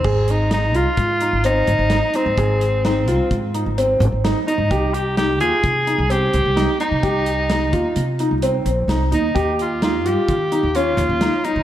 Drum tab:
CC |x---------|----------|----------|----------|
HH |-xxxxxxxxx|xxxxxxxxxx|xxxxxxxxxx|xxxxxxxxxx|
SD |--o-----oo|--oo----o-|--o-----o-|--o-----o-|
BD |o---o-----|o---o-----|o---o-----|o--o------|

CC |----------|
HH |xxxxxxxxxx|
SD |--o-----o-|
BD |o---o-----|